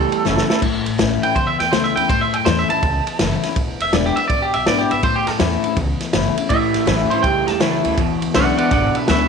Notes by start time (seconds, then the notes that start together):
Already playing: E2 A2 G3 A4
0.12 muted upright bass stroke, ride
0.25 F#1 A2 E3 F#3 A3 C#4 E4, snare
0.37 snare
0.50 A2 E3 C#4 E4, muted upright bass stroke, snare
0.62 A1 A2, kick, crash
0.86 A1, ride
0.98 A1 E3 A3 C#4 E4, snare, ride
1.23 C#4 E4 G5, muted upright bass stroke, ride
1.35 C#2 E2 C5, kick, ride
1.47 E5
1.60 E2 G5, snare, ride
1.71 C#2 E3 A3 C#4 E4 C5, snare, ride
1.84 E5
1.96 D2 C#4 E4 G5, ride
2.09 E2 A2 C5, kick, ride
2.21 E5
2.33 F#2 G5, ride
2.45 E2 E3 A3 C#4 E4 C5, snare, ride
2.59 E5
2.69 C#4 E4 A5, muted upright bass stroke, ride
2.83 C#2 E2, kick, ride
3.07 ride
3.19 F#1 E3 A3 C#4 E4, snare, ride
3.43 C#4 E4, muted upright bass stroke, snare, ride
3.56 E1 E2, kick, ride
3.80 E1 E5, ride
3.93 E1 D3 G#3 B3 E4 D5, snare, ride
4.06 G4
4.16 B3 E4 E5, muted upright bass stroke, ride
4.28 G#1 B2 D5, kick, ride
4.42 G4
4.54 B1 E5, ride
4.66 G#1 D3 G#3 B3 E4 D5, snare, ride
4.79 G4
4.89 G#1 B3 E4 E5, ride
5.03 A1 A2 C5, kick, ride
5.16 G4
5.27 F#2 A4, snare, ride
5.39 E2 E3 A3 C#4 E4, snare, ride
5.64 C#4 E4, muted upright bass stroke, ride
5.77 C#2 E2, kick, ride
6.00 muted upright bass stroke, snare, ride
6.13 F#1 E3 A3 C#4 E4, snare, ride
6.37 C#4 E4, muted upright bass stroke, ride
6.49 A1 A2 E3 E5, kick, ride
6.74 A1, snare, ride
6.86 A1 A2 E3 F#3 A3 C#4 E4, snare, ride
7.10 A2 E3 C#4 E4 C5, muted upright bass stroke, ride
7.23 C#2 A2 G3 G5, kick, ride
7.47 E2 A5, snare, ride
7.60 C#2 A2 E3 F#3 A3 C#4 E4, snare, ride
7.84 D2 A2 E3 C#4 E4, ride
7.97 E1 E2 B2, kick, ride
8.22 D2, ride
8.34 B1 E2 C#3 D3 G#3 B3 E4 D5 F#5, snare, ride
8.57 E2 B2 D5 F#5, ride
8.71 G#1 E2 B2 D3 D5 F#5, kick, ride
8.95 B4 E5, muted upright bass stroke, ride
9.08 D2 E2 C#3 D3 G#3 B3 E4 B4 E5, snare, ride